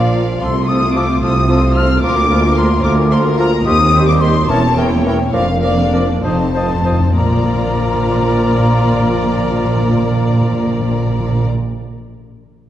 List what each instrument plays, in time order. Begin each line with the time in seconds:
Already playing: double bass section A#1, cello section A#2, bassoon F3, viola section A#3 F4, french horn section D4 F4, clarinet F4, cor anglais D5, violin section D5 F5, flute F5
0.41 double bass section C2, cello section C3, bassoon F3, french horn section A3 F4, clarinet F4, cor anglais A4, flute C6, violin section C6
0.68 bassoon F3, viola section A3 F4, clarinet F4, cor anglais A4, violin section C5 D#6, flute D#6
0.94 bassoon F3, clarinet F4, cor anglais A4, flute D6, violin section D6
1.22 double bass section C2, cello section C3, bassoon F3, french horn section A3 F4, clarinet F4, cor anglais A4, flute D#6, violin section D#6
1.48 bassoon F3, viola section A3 F4, clarinet F4, cor anglais A4, violin section C5
1.75 bassoon F3, clarinet F4, cor anglais A4, flute F6, violin section F6
2.03 double bass section D2, cello section D2, bassoon F3, viola section A#3 F4, french horn section A#3 F4, clarinet F4, cor anglais A#4, violin section A#4 D6, flute D6
2.30 bassoon F3, viola section A#3 F4, clarinet F4, cor anglais A#4, violin section A#4
2.57 bassoon F3, clarinet F4, cor anglais A#4, violin section C6, flute C6
2.83 double bass section D2, cello section D2, bassoon F3, french horn section A#3 F4, clarinet F4, cor anglais A#4, violin section D6, flute D6
3.11 bassoon F3, viola section A#3 F4, clarinet F4, cor anglais A#4, violin section A#4 C6, flute C6
3.39 bassoon F3, clarinet F4, cor anglais A#4, violin section A#5, flute A#5
3.65 double bass section D#2, cello section D#2, bassoon D#3, french horn section C4 D#4, clarinet G4, cor anglais C5, flute D#6, violin section D#6
3.94 bassoon D#3, viola section G3 G4, clarinet G4, violin section C5, cor anglais C5
4.07 violin section D6, flute D6
4.21 bassoon D#3, clarinet G4, cor anglais C5, violin section C6, flute C6
4.48 double bass section E1, cello section E2, bassoon E3, french horn section A#3 C#4, viola section A#3 E4, clarinet A#4, violin section C#5 A5, cor anglais C#5, flute A5
4.77 bassoon E3, viola section A#3 E4, clarinet A#4, cor anglais C#5, violin section C#5 G5, flute G5
5.06 bassoon E3, clarinet A#4, cor anglais C#5, flute G5, violin section G5
5.33 double bass section F1, cello section F2, bassoon F3, french horn section A#3 D4, clarinet A#4, cor anglais D5, violin section F5, flute F5
5.62 bassoon F3, viola section A#3 D4, clarinet A#4, violin section D5 F5, cor anglais D5, flute F5
5.92 bassoon F3, clarinet A#4, flute D5, cor anglais D5, violin section D5
6.23 double bass section F1, timpani F2, cello section F2, bassoon F3, viola section C4 D#4, french horn section C4 D#4, clarinet C5, violin section C5 A5, cor anglais D#5, flute A5
6.32 timpani F2
6.41 timpani F2
6.50 timpani F2
6.54 bassoon F3, viola section C4 D#4, clarinet C5, violin section C5, cor anglais D#5
6.67 timpani F2
6.75 timpani F2
6.83 timpani F2, bassoon F3, clarinet C5, cor anglais D#5
6.92 timpani F2
7.00 timpani F2
7.15 double bass section A#1, cello section A#2, timpani A#2, bassoon F3, viola section A#3 F4, french horn section D4 F4, clarinet A#4, cor anglais D5, violin section D5 A#5, flute A#5
7.22 timpani A#2
7.28 timpani A#2
7.35 timpani A#2
7.42 timpani A#2
7.49 timpani A#2
7.55 timpani A#2
7.61 timpani A#2
7.68 timpani A#2
7.75 timpani A#2
7.81 timpani A#2
7.87 timpani A#2
7.94 timpani A#2
8.01 timpani A#2
8.07 timpani A#2
8.14 timpani A#2
8.21 timpani A#2
8.27 timpani A#2
8.34 timpani A#2
8.40 timpani A#2
8.47 timpani A#2
8.53 timpani A#2
8.60 timpani A#2
8.66 timpani A#2
8.72 timpani A#2
8.79 timpani A#2
8.85 timpani A#2
8.92 timpani A#2
8.99 timpani A#2
9.06 timpani A#2
9.13 timpani A#2
9.18 timpani A#2
9.25 timpani A#2
9.32 timpani A#2
9.38 timpani A#2
9.44 timpani A#2
9.51 timpani A#2
9.58 timpani A#2
9.64 timpani A#2
9.70 timpani A#2
9.76 timpani A#2
9.82 timpani A#2
9.89 timpani A#2
9.96 timpani A#2
10.02 timpani A#2
10.09 timpani A#2
10.15 timpani A#2
10.21 timpani A#2
10.28 timpani A#2
10.34 timpani A#2
10.41 timpani A#2
10.47 timpani A#2
10.53 timpani A#2
10.60 timpani A#2
10.67 timpani A#2
10.73 timpani A#2
10.80 timpani A#2
10.87 timpani A#2
10.93 timpani A#2
11.00 timpani A#2
11.06 timpani A#2
11.12 timpani A#2
11.19 timpani A#2
11.25 timpani A#2
11.32 timpani A#2
11.39 timpani A#2
11.45 timpani A#2
11.52 timpani A#2